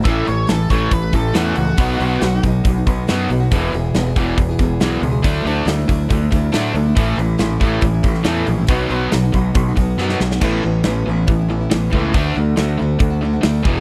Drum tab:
CC |----------------|----------------|----------------|----------------|
HH |o-o-o-o-o-o-o-o-|o-o-o-o-o-o-o-o-|o-o-o-o-o-o-o-o-|o-o-o-o-o-o-o-o-|
SD |----o-------o---|----o-------o---|----o-------o---|----o-------o---|
BD |o-----o-o-o-----|o-----o-o-o-----|o-----o-o-o-----|o-----o-o-o-----|

CC |----------------|----------------|x---------------|----------------|
HH |o-o-o-o-o-o-o-o-|o-o-o-o-o-o-----|----o---o---o---|o---o---o---o---|
SD |----o------oo---|----o-------oooo|----o-------o---|----o-------o---|
BD |o-----o-o-o-----|o-----o-o-o-----|o-------o-----o-|o-------o-----o-|